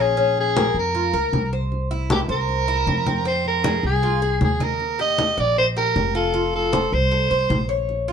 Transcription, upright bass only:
Already playing: A#1
0.74 F2
1.13 C#2
1.33 C2
2.28 C2
2.87 F2
3.83 C2
4.41 D#2
5.38 A#1
5.96 F1
6.92 C2
7.31 C2
7.50 A#1

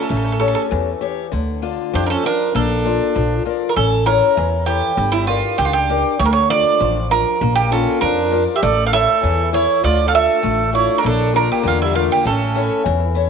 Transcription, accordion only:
Already playing: C#4
1.93 D4
2.05 D4
2.10 C#4
2.25 D4
2.56 D4
7.57 A#3
7.71 C#4
8.02 D4
8.55 G4
8.63 A4
8.86 A4
8.93 A4
9.54 E4
9.83 F4
10.07 A4
10.14 A4
10.75 E4
10.97 D4
11.05 D4
11.35 D4
11.50 A#3
11.65 A#3
11.81 G3
11.97 A3
12.12 A#3
12.27 C#4

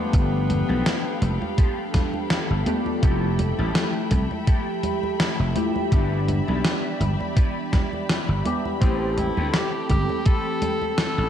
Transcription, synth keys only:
Already playing: F3 A3 B3 D4 G4
0.12 F3 A3 B3 D4 G4
2.66 F3 A3 B3 D4 G4
3.01 F3 A3 E4 G4
5.55 F3 A3 E4 G4
5.90 E3 G3 B3 D4 G4
8.45 E3 G3 B3 D4 G4
8.80 E3 A3 C4 G4

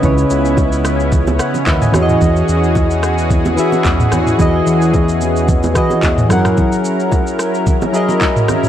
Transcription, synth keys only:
Already playing: C#4 E4 B4 D#5
0.00 C#3 C#4 E4
0.04 B4 C#5
1.40 C#5 F#5
1.67 B4 E5
1.82 D#5 G#5
1.92 E3 E4 F#4 G#4 C#5
2.02 D#5
3.56 E3 E4 F#4 G#4 E5
4.38 E3 E4 F#4 G#4 D#5
5.74 E3 E4 F#4 G#4 D#5
6.29 F#3 E4 G#4 A#4 F#5
7.92 F#3 E4 G#4 A#4 D#5

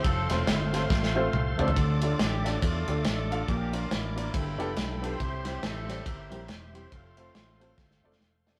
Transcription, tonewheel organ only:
Already playing: C5 C6
0.05 A4 F5
1.77 A4 D5 D6
3.48 A#4
4.34 A4 G5 B5
5.20 G4 C5 E5 C6
6.93 A4 C5 F5

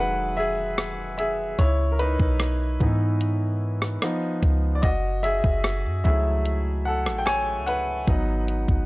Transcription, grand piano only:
Already playing: D#3 F#3 G#3 G#4 D#5 E5 F#5
0.00 B4
0.37 G#4 E5
1.18 G#4 E5
1.59 E4 C#5
1.92 A#4
1.99 D#4 B4
2.81 E3 B3 D#4
4.02 F3 B3 D#4
4.75 D5
4.82 F#4 D#5
5.23 G#4 E5
6.04 F#3 A3 E4 G#4 E5
6.85 A4 F#5
7.18 G5
7.26 C#5 G#5
7.66 B4 F#5
8.08 F#3 B3 D#4

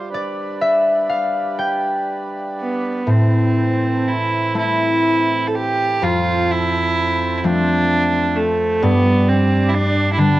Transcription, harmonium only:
Already playing: G3
0.10 D4 B4
3.07 E3 C4 A4
6.00 F3
8.82 G3 D4 D5

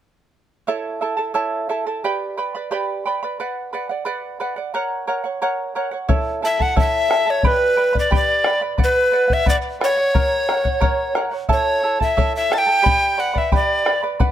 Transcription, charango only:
0.67 E4 A4 C#5 E5 A5
1.01 E4 A4 E5 A5
1.17 E4 A4 A5
1.34 E4 A4 C#5 E5 A5
1.69 E4 A4 E5 A5
1.87 E4 A4 A5
2.04 G4 B4 D5 G5 B5
2.37 B4 D5 G5 B5
2.55 B4 D5 B5
2.71 G4 B4 D5 G5 B5
3.06 B4 D5 G5 B5
3.23 B4 D5 B5
3.40 B4 D5 F#5
3.73 B4 D5 F#5
3.89 D5 F#5
4.05 B4 D5 F#5
4.40 B4 D5 F#5
4.56 D5 F#5
4.74 A#4 C#5 F#5
5.07 A#4 C#5 F#5
5.24 C#5 F#5
5.42 A#4 C#5 F#5
5.75 A#4 C#5 F#5
5.91 C#5 F#5
6.08 E4 A4 C#5 E5 A5
6.42 E4 A4 E5 A5
6.60 E4 A4 A5
6.76 E4 A4 C#5 E5 A5
7.09 E4 A4 E5 A5
7.26 E4 A4 A5
7.44 G4 B4 D5 G5 B5
7.77 B4 D5 G5 B5
7.93 B4 D5 B5
8.11 G4 B4 D5 G5 B5
8.46 B4 D5 G5 B5
8.61 B4 D5 B5
8.78 B4 D5 F#5
9.12 B4 D5 F#5
9.28 D5 F#5
9.46 B4 D5 F#5
9.81 B4 D5 F#5
9.97 D5 F#5
10.14 A#4 C#5 F#5
10.49 A#4 C#5 F#5
10.64 C#5 F#5
10.80 A#4 C#5 F#5
11.15 A#4 C#5 F#5
11.31 C#5 F#5
11.49 E4 A4 C#5 E5 A5
11.83 E4 A4 E5 A5
12.00 E4 A4 A5
12.17 E4 A4 C#5 E5 A5
12.50 E4 A4 E5 A5
12.67 E4 A4 A5
12.82 G4 B4 D5 G5 B5
13.18 B4 D5 G5 B5
13.34 B4 D5 B5
13.52 G4 B4 D5 G5 B5
13.85 B4 D5 G5 B5
14.03 B4 D5 B5
14.20 B4 D5 F#5

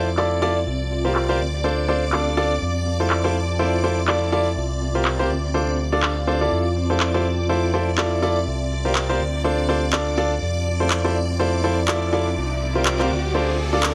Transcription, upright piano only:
0.18 E4 F4 A4 D5
0.42 E4 F4 A4 D5
1.05 F4 G4 A#4 C5
1.29 F4 G4 A#4 C5
1.64 D4 F4 A4 C5
1.88 D4 F4 A4 C5
2.13 D4 F4 A4 D5
2.37 D4 F4 A4 D5
3.00 E4 F4 A4 C5
3.24 E4 F4 A4 C5
3.59 E4 F4 A4 C5
3.84 E4 F4 A4 C5
4.08 E4 F4 A4 D5
4.32 E4 F4 A4 D5
4.95 F4 G4 A#4 C5
5.19 F4 G4 A#4 C5
5.54 D4 F4 A4 C5
5.92 D4 F4 A4 D5
6.27 D4 F4 A4 C5
6.41 E4 F4 A4 D5
6.90 E4 F4 A4 C5
7.14 E4 F4 A4 C5
7.49 E4 F4 A4 C5
7.74 E4 F4 A4 C5
7.98 E4 F4 A4 D5
8.22 E4 F4 A4 D5
8.85 F4 G4 A#4 C5
9.09 F4 G4 A#4 C5
9.44 D4 F4 A4 C5
9.69 D4 F4 A4 C5
9.93 D4 F4 A4 D5
10.17 D4 F4 A4 D5
10.80 E4 F4 A4 C5
11.04 E4 F4 A4 C5
11.39 E4 F4 A4 C5
11.64 E4 F4 A4 C5
11.88 E4 F4 A4 D5
12.13 E4 F4 A4 D5
12.75 F4 G4 A#4 C5
13.00 F4 G4 A#4 C5
13.35 D4 F4 A4 C5
13.73 D4 F4 A4 D5

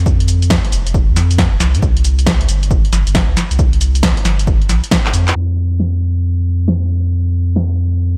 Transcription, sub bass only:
0.00 F2
0.72 F1
1.09 F2
1.53 F1
1.60 C2
1.75 A2
1.82 C2
2.49 G1
2.93 G1
3.07 G1
3.29 C2
3.51 C2
4.25 G1
4.69 A#1
5.13 F2
5.36 F2

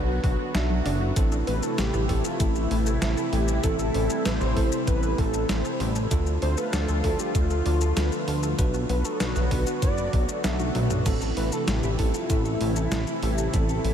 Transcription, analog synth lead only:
Already playing: F#4
1.47 B4
1.63 A4
1.79 G4
2.25 F4
2.40 E4
3.02 E4
3.33 G4
3.64 A4
4.25 C5
4.87 B4
5.19 A4
5.49 C5
6.42 C5
6.58 B4
6.73 A4
7.20 G4
7.35 F4
7.97 B4
8.90 B4
9.05 A4
9.20 B4
9.82 D5
11.37 B4
11.53 A4
11.68 G4
12.14 F4
12.30 E4
12.92 E4
13.23 G4
13.53 A4

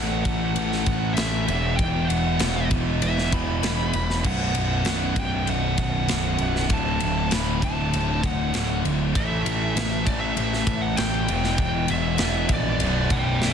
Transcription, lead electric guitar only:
Already playing: F#5
0.23 F#5
1.14 E5
1.76 G5
2.09 F#5
3.03 E5
3.33 B5
4.26 F#5
5.20 G5
5.50 F#5
5.79 F#5
6.73 A5
7.33 B5
7.64 A5
8.26 F#5
9.17 E5
10.06 D5
10.20 E5
10.81 F#5
10.96 G5
11.60 G5
11.90 E5
12.53 D5
13.12 G5

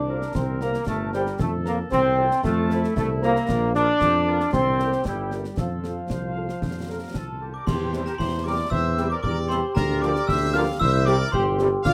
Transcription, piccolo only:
Already playing: D6
0.35 C6
0.61 A#5
0.87 A5
1.13 G5
1.39 A5
1.65 A#5
1.91 C6
2.45 A5
2.96 A5
3.22 A#5
3.75 D6
4.53 C6
5.06 G5
5.58 F5
7.15 A5
7.54 D6
7.67 C6
8.05 A#5
8.19 C6
8.45 D6
8.71 E6
9.11 D6
9.23 D6
9.49 C6
9.75 A#5
10.02 D6
10.27 E6
10.53 F6
10.79 E6
11.05 D6
11.32 C6
11.85 F6

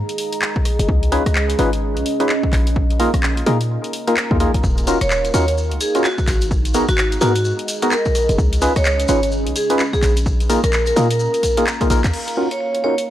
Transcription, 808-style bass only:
0.79 F#1
0.89 C#2
1.26 C#2
1.59 G#1
1.96 B1
2.53 A#1
3.14 A#1
3.46 A#2
4.31 D#2
4.54 A#1
4.64 D#1
5.01 D#1
5.34 D#2
5.71 C#2
6.28 G#1
6.89 G#1
7.21 G#2
8.29 F#1
8.38 C#2
8.76 C#2
9.09 G#1
9.46 B1
10.03 A#1
10.64 A#1
10.96 A#2
11.90 A#1
12.04 D#2

